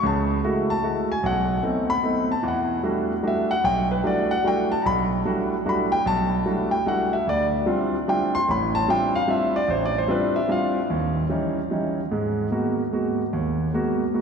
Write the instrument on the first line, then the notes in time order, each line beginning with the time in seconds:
grand piano
0.03 C#2 C#3 A5
0.44 G#3 A3 E4 F#4
0.70 A5
0.83 G#3 A3 E4 F#4
1.12 G#5
1.23 B1 F#5
1.63 A3 B3 C4 D#4
1.90 B5
2.03 A3 B3 C4 D#4
2.32 A5
2.43 E2 E3
2.48 F#5
2.83 G3 A3 D4 E4 F#4
3.23 G3 A3 D4 E4 F#4
3.28 E5
3.51 F#5
3.64 B1 G5
3.91 B4
4.04 G3 A3 D4 E4 F#4 D5
4.31 F#5
4.44 G3 A3 D4 E4 F#4 G5
4.72 A5
4.82 B1 A#5
4.86 B5
5.25 G3 A3 D4 E4 F#4
5.66 G3 A3 D4 E4 F#4 B5
5.92 G5
6.06 B1 A5
6.46 G3 A3 D4 E4 F#4
6.71 G5
6.86 G3 A3 D4 E4 F#4 F#5
7.13 E5
7.27 D2 D5
7.66 G3 C4 D4 E4 F4
8.08 G3 C4 D4 E4 F4 G5
8.35 C6
8.48 A1 A2 B5
8.75 A5
8.88 G3 C4 D4 E4 F4 G5
9.15 F5
9.28 G3 C4 D4 E4 F4 E5
9.56 D5
9.68 A1 C5
9.86 D5
9.98 C5
10.08 G3 C4 D4 E4 F4 B4
10.36 E5
10.48 G3 C4 D4 E4 F4 F5
10.90 D#2
11.30 E3 G3 C#4 D#4
11.71 E3 G3 C#4 D#4
12.11 G#2 G#3
12.51 G#3 A#3 B3 F#4
12.93 G#3 A#3 B3 F#4
13.33 D#2
13.74 G#3 A#3 B3 F#4
14.14 G#3 A#3 B3 F#4